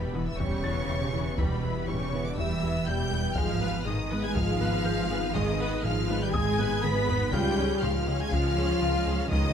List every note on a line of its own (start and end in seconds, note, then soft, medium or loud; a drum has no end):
0.00 0.33 E1 medium
0.00 3.38 E1 medium
0.00 0.26 B2 medium
0.00 3.33 E3 medium
0.00 0.14 G3 medium
0.00 0.27 B3 medium
0.00 3.33 B3 medium
0.00 0.14 G4 medium
0.00 3.33 G4 medium
0.00 0.27 B4 medium
0.00 3.33 B4 medium
0.00 0.27 B5 medium
0.00 0.62 A6 medium
0.00 sub drop medium
0.14 0.30 E3 medium
0.14 0.39 B3 medium
0.14 0.30 B3 medium
0.14 0.39 E4 medium
0.14 taiko rim soft
0.26 0.39 E3 medium
0.26 0.39 E4 medium
0.26 0.39 E5 medium
0.26 0.39 E6 loud
0.38 0.83 E1 medium
0.38 0.55 E2 loud
0.38 1.38 C#3 loud
0.38 0.54 E3 loud
0.38 0.62 G3 medium
0.38 1.38 C#4 loud
0.38 0.62 G4 medium
0.38 1.38 C#5 loud
0.38 1.38 C#6 loud
0.38 taiko loud
0.64 0.80 E2 medium
0.64 0.79 G3 medium
0.64 0.89 B3 medium
0.64 0.89 E4 medium
0.64 2.09 A6 medium
0.89 1.33 E1 loud
0.89 1.04 E2 medium
0.89 1.14 G3 medium
0.89 1.04 E4 medium
0.89 1.14 G4 medium
1.13 1.29 E2 medium
1.13 1.39 B3 medium
1.13 1.28 E4 medium
1.13 1.39 E4 medium
1.37 1.82 E1 loud
1.37 1.54 E2 loud
1.37 1.87 B2 medium
1.37 1.53 E3 loud
1.37 1.61 G3 medium
1.37 1.87 B3 medium
1.37 1.61 G4 medium
1.37 1.87 B4 medium
1.37 1.88 B5 medium
1.37 taiko loud
1.63 1.79 E2 medium
1.63 1.78 G3 medium
1.63 1.88 B3 medium
1.63 1.88 E4 medium
1.88 2.32 E1 medium
1.88 2.03 E2 medium
1.88 2.24 C#3 medium
1.88 2.13 G3 medium
1.88 2.25 C#4 medium
1.88 2.03 E4 medium
1.88 2.13 G4 medium
1.88 2.25 C#5 medium
1.88 2.25 C#6 loud
1.88 taiko low-mid medium
2.13 2.28 E3 medium
2.13 2.38 B3 medium
2.13 2.28 B3 medium
2.13 2.38 E4 medium
2.25 2.37 D3 medium
2.25 2.38 D4 medium
2.25 2.38 D5 medium
2.25 2.38 D6 loud
2.37 2.81 E1 loud
2.37 2.53 E2 loud
2.37 2.86 E3 loud
2.37 2.53 E3 loud
2.37 2.61 G3 medium
2.37 2.88 E4 loud
2.37 2.61 G4 medium
2.37 2.88 E5 medium
2.37 2.86 E6 loud
2.37 taiko medium
2.63 2.78 E2 medium
2.63 2.78 G3 medium
2.63 2.87 B3 medium
2.63 2.87 E4 medium
2.86 3.31 E1 loud
2.86 3.03 E2 medium
2.86 3.12 G3 medium
2.86 3.37 G3 loud
2.86 3.02 E4 medium
2.86 3.12 G4 medium
2.86 3.36 G4 medium
2.86 3.36 G5 loud
2.86 4.31 G6 medium
2.86 3.36 G6 loud
3.12 3.27 E2 medium
3.12 3.37 B3 medium
3.12 3.37 E4 medium
3.12 3.27 E4 medium
3.36 7.35 G#1 medium
3.36 3.81 G#1 loud
3.36 3.52 G#2 loud
3.36 7.33 D#3 medium
3.36 3.85 F3 loud
3.36 3.60 G#3 medium
3.36 3.52 G#3 loud
3.36 7.33 D#4 loud
3.36 3.85 F4 loud
3.36 3.60 G#4 medium
3.36 7.34 G#4 medium
3.36 7.30 B4 loud
3.36 3.87 F5 loud
3.36 3.86 F6 loud
3.36 taiko loud
3.61 3.77 G#2 medium
3.61 3.86 B3 medium
3.61 3.77 B3 medium
3.61 3.86 B4 medium
3.61 taiko rim soft
3.85 4.30 G#1 medium
3.85 4.02 G#2 medium
3.85 4.23 D#3 medium
3.85 4.11 G#3 medium
3.85 4.23 D#4 medium
3.85 4.11 G#4 medium
3.85 4.02 G#4 medium
3.85 4.23 D#5 medium
3.85 4.23 D#6 loud
3.85 taiko low-mid medium
4.11 4.27 G#3 medium
4.11 4.36 B3 medium
4.11 4.26 D#4 medium
4.11 4.36 B4 medium
4.11 taiko rim soft
4.24 4.36 G#3 loud
4.24 4.36 G#4 loud
4.24 4.36 G#5 loud
4.24 4.36 G#6 loud
4.35 4.80 G#1 loud
4.35 4.51 G#2 loud
4.35 5.35 F3 loud
4.35 4.51 G#3 loud
4.35 4.59 G#3 medium
4.35 5.35 F4 loud
4.35 4.59 G#4 medium
4.35 5.35 F5 loud
4.35 5.33 F6 loud
4.35 taiko medium
4.60 4.75 G#2 medium
4.60 4.86 B3 medium
4.60 4.76 B3 medium
4.60 4.86 B4 medium
4.84 5.29 G#1 loud
4.84 5.00 G#2 medium
4.84 5.11 G#3 medium
4.84 5.01 G#4 medium
4.84 5.11 G#4 medium
4.84 6.30 G6 medium
5.09 5.25 G#2 medium
5.09 5.35 B3 medium
5.09 5.26 G#4 medium
5.09 5.35 B4 medium
5.34 5.78 G#1 loud
5.34 5.50 G#2 loud
5.34 5.84 D#3 loud
5.34 5.58 G#3 loud
5.34 5.50 G#3 loud
5.34 5.84 D#4 loud
5.34 5.58 G#4 medium
5.34 5.85 D#5 loud
5.34 5.85 D#6 loud
5.34 taiko loud
5.60 5.75 G#2 loud
5.60 5.75 B3 medium
5.60 5.85 B3 medium
5.60 5.85 B4 medium
5.84 6.28 G#1 loud
5.84 5.99 G#2 medium
5.84 6.21 F3 loud
5.84 6.09 G#3 medium
5.84 6.22 F4 loud
5.84 6.09 G#4 medium
5.84 6.00 G#4 medium
5.84 6.22 F5 loud
5.84 6.21 F6 loud
5.84 taiko low-mid medium
6.09 6.25 G#3 medium
6.09 6.34 B3 medium
6.09 6.25 D#4 medium
6.09 6.34 B4 medium
6.21 6.34 G3 loud
6.21 6.34 G4 loud
6.21 6.34 G5 loud
6.21 6.34 G6 loud
6.33 6.78 G#1 loud
6.33 6.49 G#2 loud
6.33 6.84 G#3 loud
6.33 6.57 G#3 loud
6.33 6.49 G#3 loud
6.33 6.83 G#4 loud
6.33 6.58 G#4 loud
6.33 6.83 G#5 loud
6.33 7.79 D#6 loud
6.33 6.82 G#6 loud
6.33 taiko loud
6.59 6.74 G#2 medium
6.59 6.84 B3 medium
6.59 6.74 B3 medium
6.59 6.84 B4 medium
6.59 taiko low-mid loud
6.83 7.27 G#1 loud
6.83 6.99 G#2 medium
6.83 7.08 G#3 medium
6.83 7.32 B3 loud
6.83 7.08 G#4 medium
6.83 6.99 G#4 medium
6.83 7.18 B4 loud
6.83 7.33 B5 loud
6.83 7.33 B6 loud
6.83 taiko mid loud
7.08 7.23 G#2 medium
7.08 7.33 B3 medium
7.08 7.24 G#4 medium
7.08 7.33 B4 medium
7.08 taiko low loud
7.33 7.77 C#2 loud
7.33 9.53 C#2 medium
7.33 7.48 C#2 loud
7.33 7.48 C#3 loud
7.33 9.53 F3 medium
7.33 7.82 G3 loud
7.33 7.56 G#3 medium
7.33 9.53 C#4 medium
7.33 7.56 F4 loud
7.33 9.53 F4 medium
7.33 7.82 G4 loud
7.33 9.53 C#5 loud
7.33 8.78 F5 medium
7.33 7.82 G5 loud
7.33 8.78 F6 medium
7.33 7.83 G6 loud
7.33 taiko loud
7.58 7.73 C#2 medium
7.58 7.73 F3 medium
7.58 7.83 C#4 medium
7.58 7.83 G#4 medium
7.82 7.98 C#2 medium
7.82 8.27 C#2 loud
7.82 8.20 F3 loud
7.82 8.08 G#3 medium
7.82 7.98 C#4 medium
7.82 8.20 F4 loud
7.82 8.08 F4 medium
7.82 8.20 F5 loud
7.82 8.20 F6 loud
7.82 taiko low-mid medium
8.08 8.23 C#3 medium
8.08 8.23 G#3 medium
8.08 8.32 C#4 medium
8.08 8.33 G#4 medium
8.19 8.32 G#3 loud
8.19 8.33 G#4 loud
8.19 8.32 G#5 loud
8.19 8.32 G#6 loud
8.32 8.76 C#2 loud
8.32 8.47 C#2 loud
8.32 8.48 C#3 loud
8.32 9.29 F3 loud
8.32 8.55 G#3 loud
8.32 9.32 F4 loud
8.32 8.55 F4 medium
8.32 9.31 F5 loud
8.32 9.31 F6 loud
8.32 taiko medium
8.57 8.72 C#2 medium
8.57 8.72 F3 medium
8.57 8.82 C#4 medium
8.57 8.82 G#4 medium
8.81 9.26 C#2 loud
8.81 8.97 C#2 medium
8.81 9.06 G#3 medium
8.81 8.97 C#4 medium
8.81 9.07 F4 loud
9.07 9.22 C#2 medium
9.07 9.32 C#4 medium
9.07 9.22 C#4 medium
9.07 9.32 G#4 medium
9.31 9.53 C#2 loud
9.31 9.47 C#2 loud
9.31 9.47 C#3 loud
9.31 9.53 D#3 loud
9.31 9.53 G#3 medium
9.31 9.53 D#4 loud
9.31 9.53 F4 medium
9.31 9.53 D#5 loud
9.31 9.53 D#6 loud
9.31 taiko loud